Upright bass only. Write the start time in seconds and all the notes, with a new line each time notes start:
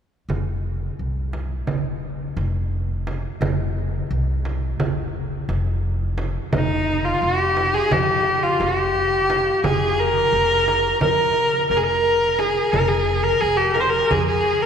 0.29 F1
0.99 C2
1.68 F1
2.37 F1
3.41 F1
4.11 C2
4.79 F1
5.49 F1
6.53 F1
7.22 F1
7.91 F2
8.60 F1
9.64 F1
10.32 F1
11.01 F2
11.70 F1
12.73 F1
13.42 F1
14.11 F2